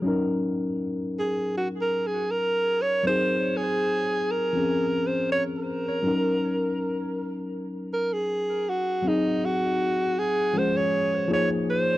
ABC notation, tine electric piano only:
X:1
M:4/4
L:1/8
Q:1/4=80
K:Ebdor
V:1 name="Tine electric piano"
[G,DEB]8 | [G,CEA]4 [F,CDA]4 | [G,DEB]8 | [G,CEA]4 [F,A,DA]2 [F,B,EA]2 |]